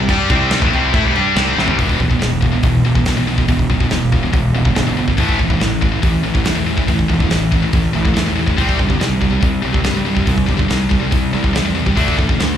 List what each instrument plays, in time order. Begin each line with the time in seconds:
0.09 fingered electric bass G2, distorted electric guitar G3 D4 G4, kick, crash
0.29 fingered electric bass C2, distorted electric guitar C3 G3 C4, kick, crash
0.51 snare, crash
0.62 fingered electric bass A1, distorted electric guitar A2 E3, kick
0.73 fingered electric bass C2, distorted electric guitar C3 G3 C4, crash
0.94 fingered electric bass A2, distorted electric guitar A3 E4, kick, crash
1.05 fingered electric bass C2, distorted electric guitar C3 G3
1.15 fingered electric bass G2, distorted electric guitar G3 D4 G4, crash
1.36 fingered electric bass C2, distorted electric guitar C3 G3 C4, snare, crash
1.57 fingered electric bass A1, distorted electric guitar A2 E3, snare
1.68 fingered electric bass C2, distorted electric guitar C3 G3, floor tom
1.78 fingered electric bass E1, distorted electric guitar E2 B2 E3, kick, open hi-hat
1.89 kick
2.00 fingered electric bass B1, distorted electric guitar E2 B2, kick
2.09 distorted electric guitar E2 B2, kick
2.19 fingered electric bass E1, distorted electric guitar E2 B2, snare, open hi-hat
2.41 distorted electric guitar E2 B2, kick
2.52 distorted electric guitar E2 B2
2.63 fingered electric bass E1, distorted electric guitar E2 B2, kick, open hi-hat
2.85 fingered electric bass E1, distorted electric guitar E2 B2
2.95 distorted electric guitar E2 B2, kick
3.06 fingered electric bass B1, distorted electric guitar E2 B2, snare, open hi-hat
3.17 distorted electric guitar E2 B2
3.27 distorted electric guitar E2 B2
3.38 distorted electric guitar E2 B2, kick
3.48 fingered electric bass E1, distorted electric guitar E2 B2, kick, open hi-hat
3.59 kick
3.70 fingered electric bass B1, distorted electric guitar E2 B2, kick
3.80 distorted electric guitar E2 B2, kick
3.90 fingered electric bass E1, distorted electric guitar E2 B2, snare, open hi-hat
4.12 distorted electric guitar E2 B2, kick
4.23 distorted electric guitar E2 B2
4.33 fingered electric bass E1, distorted electric guitar E2 B2, kick, open hi-hat
4.55 fingered electric bass E1, distorted electric guitar E2 B2
4.65 distorted electric guitar E2 B2, kick
4.75 fingered electric bass G1, distorted electric guitar E2 B2, snare, open hi-hat
4.87 distorted electric guitar E2 B2
4.97 distorted electric guitar E2 B2
5.08 distorted electric guitar E2 B2, kick
5.17 fingered electric bass A1, distorted electric guitar A2 E3 A3, kick, open hi-hat
5.29 kick
5.39 fingered electric bass E1, distorted electric guitar A2 E3, kick
5.50 distorted electric guitar A2 E3, kick
5.60 fingered electric bass A1, distorted electric guitar A2 E3, snare, open hi-hat
5.81 distorted electric guitar A2 E3, kick
5.92 distorted electric guitar A2 E3
6.02 fingered electric bass A1, distorted electric guitar A2 E3, kick, open hi-hat
6.23 fingered electric bass A1, distorted electric guitar A2 E3
6.34 distorted electric guitar A2 E3, kick
6.44 fingered electric bass E2, distorted electric guitar A2 E3, snare, open hi-hat
6.55 distorted electric guitar A2 E3
6.66 distorted electric guitar A2 E3
6.77 distorted electric guitar A2 E3, kick
6.88 fingered electric bass A1, distorted electric guitar A2 E3, kick, open hi-hat
6.99 kick
7.08 fingered electric bass E1, distorted electric guitar A2 E3, kick
7.20 distorted electric guitar A2 E3, kick
7.30 fingered electric bass A1, distorted electric guitar A2 E3, snare, open hi-hat
7.52 distorted electric guitar A2 E3, kick
7.62 distorted electric guitar A2 E3
7.73 fingered electric bass A1, distorted electric guitar A2 E3, kick, open hi-hat
7.93 fingered electric bass A1, distorted electric guitar A2 E3
8.05 distorted electric guitar A2 E3, kick
8.14 fingered electric bass E2, distorted electric guitar A2 E3, snare, open hi-hat
8.26 distorted electric guitar A2 E3
8.36 distorted electric guitar A2 E3
8.46 distorted electric guitar A2 E3, kick
8.57 fingered electric bass C2, distorted electric guitar C3 G3 C4, kick, open hi-hat
8.69 kick
8.79 fingered electric bass G1, distorted electric guitar C3 G3, kick
8.89 distorted electric guitar C3 G3, kick
9.00 fingered electric bass C2, distorted electric guitar C3 G3, snare, open hi-hat
9.21 distorted electric guitar C3 G3, kick
9.31 distorted electric guitar C3 G3
9.41 fingered electric bass C2, distorted electric guitar C3 G3, kick, open hi-hat
9.62 fingered electric bass C2, distorted electric guitar C3 G3
9.73 distorted electric guitar C3 G3, kick
9.84 fingered electric bass G2, distorted electric guitar C3 G3, snare, open hi-hat
9.94 distorted electric guitar C3 G3
10.05 distorted electric guitar C3 G3
10.15 distorted electric guitar C3 G3, kick
10.26 fingered electric bass C2, distorted electric guitar C3 G3, kick, open hi-hat
10.38 kick
10.47 fingered electric bass G1, distorted electric guitar C3 G3, kick
10.57 distorted electric guitar C3 G3, kick
10.68 fingered electric bass C2, distorted electric guitar C3 G3, snare, open hi-hat
10.89 distorted electric guitar C3 G3, kick
11.00 distorted electric guitar C3 G3
11.11 fingered electric bass C2, distorted electric guitar C3 G3, kick, open hi-hat
11.33 fingered electric bass C2, distorted electric guitar C3 G3
11.43 distorted electric guitar C3 G3, kick
11.53 fingered electric bass E2, distorted electric guitar C3 G3, snare, open hi-hat
11.65 distorted electric guitar C3 G3
11.75 distorted electric guitar C3 G3
11.86 distorted electric guitar C3 G3, kick
11.95 fingered electric bass D2, distorted electric guitar D3 A3 D4, kick, open hi-hat
12.08 kick
12.18 fingered electric bass A1, distorted electric guitar D3 A3, kick
12.29 distorted electric guitar D3 A3, kick
12.40 fingered electric bass D2, distorted electric guitar D3 A3, snare, open hi-hat